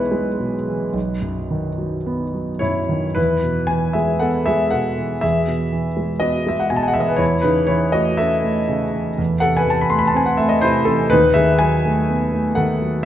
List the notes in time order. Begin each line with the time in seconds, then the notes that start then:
Already playing: B1 B2 E3 G#3 B3 E4 B4 C#5
0.12 G#3
0.39 B2
0.67 E3
0.94 B1
1.22 F#2
1.50 D#3
1.78 F#3
2.06 B3
2.34 F#3
2.59 F#2 E4 C#5
2.89 D#3
3.15 E2 E4 B4
3.43 B2
3.67 E3 B4 G#5
3.93 G#3 G#4 E5
4.19 B3 A4 F#5
4.46 G#3 G#4 E5
4.71 B2 A4 F#5
4.98 E3
5.21 E2 G#4 E5
5.47 B2
5.72 E3
5.97 G#3
6.20 B3 F#4 D#5
6.47 G#3 E5
6.60 F#5
6.70 B2 G#5
6.76 A5
6.83 G#5
6.88 F#5
6.94 E3 E5
7.00 D#5
7.08 B4
7.16 E2 E4 C#5
7.42 C#3 D#4 B4
7.67 E3 E4 C#5
7.92 A3 F#4 D#5
8.17 C#4 A4 E5
8.44 A3
8.69 C#3
8.93 E3
9.18 E2
9.40 C3 A4 F#5
9.57 B4 G#5
9.66 E3 A5
9.81 B5
9.90 A3 C6
9.99 B5
10.07 A5
10.14 C4 G#5
10.26 F#5
10.37 A3 E5
10.49 D#5
10.61 C3 E4 C5
10.85 E3 C4 A4
11.10 D#2 D#4 B4
11.34 D#3 G#4 E5
11.59 F#3 B4 G#5
11.85 A3
12.10 B3
12.34 A3
12.55 D#3 A4 F#5
12.82 F#3